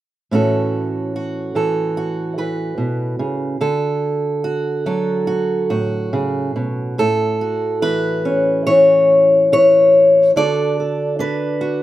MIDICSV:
0, 0, Header, 1, 2, 480
1, 0, Start_track
1, 0, Key_signature, 3, "major"
1, 0, Tempo, 828729
1, 178, Time_signature, 4, 2, 24, 8
1, 2574, Tempo, 846262
1, 5454, Tempo, 832178
1, 6784, End_track
2, 0, Start_track
2, 0, Title_t, "Steel-string acoustic guitar"
2, 0, Program_c, 0, 25
2, 182, Note_on_c, 0, 45, 59
2, 188, Note_on_c, 0, 52, 49
2, 190, Note_on_c, 0, 61, 49
2, 195, Note_on_c, 0, 66, 49
2, 201, Note_on_c, 0, 69, 51
2, 668, Note_off_c, 0, 66, 0
2, 670, Note_on_c, 0, 66, 50
2, 892, Note_off_c, 0, 52, 0
2, 899, Note_on_c, 0, 52, 54
2, 902, Note_off_c, 0, 69, 0
2, 904, Note_on_c, 0, 69, 54
2, 1140, Note_off_c, 0, 66, 0
2, 1142, Note_on_c, 0, 66, 54
2, 1370, Note_off_c, 0, 52, 0
2, 1377, Note_on_c, 0, 52, 52
2, 1378, Note_off_c, 0, 69, 0
2, 1381, Note_on_c, 0, 71, 54
2, 1606, Note_off_c, 0, 52, 0
2, 1608, Note_on_c, 0, 47, 54
2, 1847, Note_off_c, 0, 47, 0
2, 1849, Note_on_c, 0, 49, 56
2, 2064, Note_off_c, 0, 45, 0
2, 2064, Note_off_c, 0, 71, 0
2, 2068, Note_off_c, 0, 61, 0
2, 2086, Note_off_c, 0, 49, 0
2, 2089, Note_on_c, 0, 50, 66
2, 2091, Note_on_c, 0, 69, 62
2, 2570, Note_off_c, 0, 66, 0
2, 2572, Note_on_c, 0, 66, 60
2, 2804, Note_off_c, 0, 69, 0
2, 2810, Note_on_c, 0, 54, 63
2, 2812, Note_on_c, 0, 69, 58
2, 3037, Note_off_c, 0, 66, 0
2, 3044, Note_on_c, 0, 66, 55
2, 3280, Note_off_c, 0, 66, 0
2, 3285, Note_off_c, 0, 69, 0
2, 3286, Note_on_c, 0, 45, 56
2, 3287, Note_on_c, 0, 66, 54
2, 3527, Note_off_c, 0, 50, 0
2, 3530, Note_on_c, 0, 49, 58
2, 3770, Note_off_c, 0, 49, 0
2, 3773, Note_on_c, 0, 47, 57
2, 3984, Note_off_c, 0, 45, 0
2, 3985, Note_off_c, 0, 54, 0
2, 4014, Note_off_c, 0, 47, 0
2, 4014, Note_on_c, 0, 45, 63
2, 4016, Note_off_c, 0, 66, 0
2, 4018, Note_on_c, 0, 69, 88
2, 4257, Note_on_c, 0, 66, 44
2, 4488, Note_off_c, 0, 69, 0
2, 4489, Note_on_c, 0, 52, 54
2, 4491, Note_on_c, 0, 71, 90
2, 4734, Note_on_c, 0, 61, 47
2, 4966, Note_off_c, 0, 52, 0
2, 4966, Note_off_c, 0, 71, 0
2, 4969, Note_on_c, 0, 73, 96
2, 4973, Note_on_c, 0, 52, 53
2, 5449, Note_off_c, 0, 52, 0
2, 5449, Note_off_c, 0, 73, 0
2, 5455, Note_on_c, 0, 52, 54
2, 5459, Note_on_c, 0, 73, 100
2, 5906, Note_off_c, 0, 45, 0
2, 5906, Note_off_c, 0, 61, 0
2, 5907, Note_off_c, 0, 66, 0
2, 5937, Note_off_c, 0, 52, 0
2, 5937, Note_off_c, 0, 73, 0
2, 5937, Note_on_c, 0, 50, 61
2, 5940, Note_on_c, 0, 62, 43
2, 5944, Note_on_c, 0, 74, 91
2, 5946, Note_on_c, 0, 66, 47
2, 5951, Note_on_c, 0, 69, 43
2, 6185, Note_off_c, 0, 69, 0
2, 6191, Note_on_c, 0, 69, 41
2, 6415, Note_off_c, 0, 62, 0
2, 6417, Note_on_c, 0, 62, 57
2, 6421, Note_off_c, 0, 69, 0
2, 6423, Note_on_c, 0, 71, 91
2, 6651, Note_off_c, 0, 66, 0
2, 6658, Note_on_c, 0, 66, 47
2, 6784, Note_off_c, 0, 50, 0
2, 6784, Note_off_c, 0, 62, 0
2, 6784, Note_off_c, 0, 66, 0
2, 6784, Note_off_c, 0, 71, 0
2, 6784, Note_off_c, 0, 74, 0
2, 6784, End_track
0, 0, End_of_file